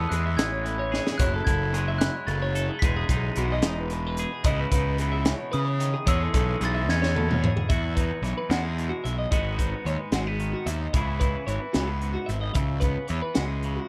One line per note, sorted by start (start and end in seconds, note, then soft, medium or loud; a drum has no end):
0.00 1.17 A2 medium
0.00 0.36 B3 medium
0.00 0.91 G#4 medium
0.00 0.13 A4 medium
0.00 0.11 E6 medium
0.09 0.37 E2 medium
0.09 0.64 E3 medium
0.09 1.22 G#3 medium
0.09 0.26 G#4 medium
0.09 0.22 F#6 medium
0.09 closed hi-hat medium
0.26 0.52 E5 medium
0.37 0.99 A1 medium
0.37 1.20 B3 medium
0.37 0.95 G#6 medium
0.37 snare loud
0.37 closed hi-hat medium
0.52 0.66 C#5 medium
0.64 1.22 E3 medium
0.64 0.79 A4 medium
0.64 closed hi-hat medium
0.79 1.07 C#5 medium
0.92 1.22 G#4 medium
0.92 snare medium
1.07 1.21 G#4 medium
1.07 snare medium
1.18 1.40 F#1 medium
1.18 2.79 F#2 medium
1.18 1.47 E4 medium
1.18 1.34 C#5 loud
1.18 1.47 F#6 medium
1.18 kick loud
1.18 closed hi-hat medium
1.34 1.46 A4 medium
1.45 2.08 F#1 medium
1.45 2.00 E4 medium
1.45 1.75 A4 medium
1.45 2.02 G#6 medium
1.45 kick medium
1.45 closed hi-hat medium
1.73 2.79 F#3 medium
1.73 2.82 G#3 medium
1.73 1.88 G#4 medium
1.73 closed hi-hat medium
1.88 2.15 E5 medium
1.98 2.83 E4 medium
1.98 2.11 F#6 medium
1.98 snare loud
1.98 closed hi-hat medium
2.15 2.28 C#5 medium
2.27 2.69 F#1 medium
2.27 2.79 C#3 medium
2.27 2.42 A4 medium
2.27 2.78 A6 medium
2.27 closed hi-hat medium
2.42 2.69 C#5 medium
2.55 2.79 A4 medium
2.55 closed hi-hat medium
2.69 2.83 G#4 medium
2.79 3.03 E1 medium
2.79 4.45 E2 medium
2.79 3.38 G#3 medium
2.79 2.96 B4 medium
2.79 4.12 B6 loud
2.79 kick loud
2.79 closed hi-hat medium
2.83 3.10 D#4 medium
2.83 4.19 G#4 medium
2.97 3.09 G#4 medium
3.09 3.30 B1 medium
3.09 3.66 D#4 medium
3.09 3.38 G#4 medium
3.09 kick medium
3.09 closed hi-hat medium
3.36 3.63 B1 medium
3.36 5.00 E3 medium
3.36 4.46 G#3 medium
3.36 3.51 F#4 medium
3.36 closed hi-hat medium
3.52 3.80 D#5 medium
3.62 4.24 E1 medium
3.62 snare loud
3.62 closed hi-hat medium
3.66 4.43 D#4 medium
3.80 3.93 B4 medium
3.90 4.45 B2 medium
3.90 4.07 G#4 medium
3.90 closed hi-hat medium
4.07 4.33 B4 medium
4.17 4.47 G#4 medium
4.17 closed hi-hat medium
4.33 4.45 G#4 medium
4.44 4.65 C#2 medium
4.44 4.99 C#3 medium
4.44 5.01 B3 medium
4.44 4.73 D#4 medium
4.44 6.09 E4 medium
4.44 4.59 D#5 medium
4.44 kick loud
4.44 closed hi-hat medium
4.60 4.71 B4 medium
4.72 5.33 C#2 medium
4.72 6.05 D#4 medium
4.72 4.99 B4 medium
4.72 kick medium
4.72 closed hi-hat medium
4.98 6.61 E3 medium
4.98 6.07 B3 medium
4.98 5.13 G#4 medium
4.98 closed hi-hat medium
5.12 5.39 E5 medium
5.25 snare loud
5.25 closed hi-hat medium
5.29 5.53 B2 medium
5.39 5.51 C#5 medium
5.52 5.80 C#3 medium
5.52 5.94 C#3 medium
5.52 5.65 B4 medium
5.52 6.09 D#6 medium
5.52 closed hi-hat medium
5.65 5.93 C#5 medium
5.80 6.07 D#3 medium
5.80 closed hi-hat medium
5.94 6.07 G#4 medium
6.06 6.27 E2 medium
6.06 7.70 E2 medium
6.06 6.61 G#3 medium
6.06 6.34 C#4 medium
6.06 7.41 G#4 medium
6.06 6.21 C#5 loud
6.06 6.63 E6 loud
6.06 kick loud
6.06 closed hi-hat medium
6.21 6.34 A4 medium
6.34 6.54 B1 medium
6.34 6.89 C#4 medium
6.34 6.61 A4 medium
6.34 kick medium
6.34 closed hi-hat medium
6.61 6.89 B1 medium
6.61 8.22 E3 medium
6.61 8.49 G#3 medium
6.61 6.75 G#4 medium
6.61 closed hi-hat medium
6.65 6.76 A6 medium
6.74 7.01 E5 medium
6.89 7.49 E2 medium
6.89 7.67 C#4 medium
6.89 7.46 G#6 medium
6.89 snare medium
7.02 7.15 C#5 medium
7.02 snare medium
7.15 7.69 B2 medium
7.15 7.29 A4 medium
7.15 high tom medium
7.29 7.56 C#5 medium
7.29 mid tom medium
7.42 7.66 G#4 medium
7.42 mid tom loud
7.56 7.70 G#4 medium
7.56 floor tom medium
7.69 8.10 E2 medium
7.69 9.30 E2 medium
7.69 9.29 F#4 medium
7.69 7.95 E5 medium
7.69 kick loud
7.69 closed hi-hat medium
7.96 9.29 D#4 medium
7.96 8.23 B4 medium
7.96 kick medium
7.96 closed hi-hat medium
8.22 8.33 B1 medium
8.22 9.31 E3 medium
8.22 8.36 C#5 medium
8.22 closed hi-hat medium
8.38 8.51 B4 medium
8.50 8.90 E2 medium
8.50 9.31 G#3 medium
8.50 8.63 F#4 medium
8.50 snare loud
8.50 closed hi-hat medium
8.63 8.89 G#4 medium
8.78 9.32 B2 medium
8.78 closed hi-hat medium
8.89 9.04 F#4 medium
9.04 9.25 B1 medium
9.04 9.18 E5 medium
9.04 closed hi-hat medium
9.19 9.30 D#5 medium
9.30 9.72 G#1 medium
9.30 10.90 G#2 medium
9.30 9.86 G#3 soft
9.30 10.12 B3 medium
9.30 9.57 D#4 medium
9.30 10.91 F#4 medium
9.30 9.59 D#5 medium
9.30 kick loud
9.30 closed hi-hat medium
9.58 10.90 D#4 medium
9.58 9.86 B4 medium
9.58 kick medium
9.58 closed hi-hat medium
9.85 9.96 D#2 medium
9.85 10.13 G#3 medium
9.85 9.99 C#5 medium
9.85 closed hi-hat medium
9.99 10.13 B4 medium
10.12 10.53 G#1 medium
10.12 10.27 G#3 medium
10.12 10.27 F#4 medium
10.12 snare medium
10.12 closed hi-hat medium
10.27 10.94 B3 soft
10.27 10.53 G#4 medium
10.40 10.91 D#3 medium
10.40 closed hi-hat medium
10.53 10.67 F#4 medium
10.66 10.87 D#2 medium
10.66 10.81 E5 medium
10.66 closed hi-hat medium
10.81 10.93 D#5 medium
10.93 11.34 C#2 medium
10.93 11.48 C#3 medium
10.93 11.49 E3 medium
10.93 11.75 B3 medium
10.93 11.21 E4 medium
10.93 13.88 G#4 medium
10.93 11.19 E5 medium
10.93 kick loud
10.93 closed hi-hat medium
11.20 12.84 E4 medium
11.20 11.46 B4 medium
11.20 kick medium
11.20 closed hi-hat medium
11.47 11.58 G#1 medium
11.47 13.09 E3 medium
11.47 11.60 C#5 medium
11.47 closed hi-hat medium
11.60 11.74 B4 medium
11.73 12.16 C#2 medium
11.73 12.59 B3 medium
11.73 11.87 F#4 medium
11.73 snare medium
11.73 closed hi-hat medium
11.87 12.13 G#4 medium
12.02 12.53 G#2 medium
12.02 closed hi-hat medium
12.14 12.28 F#4 medium
12.26 12.49 G#1 medium
12.26 12.41 E5 medium
12.26 closed hi-hat medium
12.41 12.54 D#5 medium
12.54 12.96 C#2 medium
12.54 13.10 C#3 medium
12.54 12.80 E5 medium
12.54 kick medium
12.54 closed hi-hat medium
12.80 13.88 B3 medium
12.80 13.08 B4 medium
12.80 kick medium
12.80 closed hi-hat medium
13.08 13.20 E2 medium
13.08 13.88 E3 medium
13.08 13.22 C#5 medium
13.08 closed hi-hat medium
13.22 13.36 B4 medium
13.34 13.78 C#2 medium
13.34 13.88 G#3 soft
13.34 13.47 F#4 medium
13.34 snare loud
13.34 closed hi-hat medium
13.48 13.76 G#4 medium
13.63 13.88 C#3 medium
13.63 closed hi-hat medium
13.76 13.88 F#4 medium